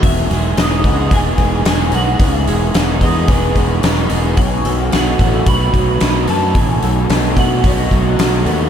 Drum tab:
HH |oooooooo|oooooooo|oooooooo|oooooooo|
SD |-oo---o-|--o---o-|--o---o-|--o---o-|
BD |o--ooo--|o--ooo--|o--ooo--|o--ooo--|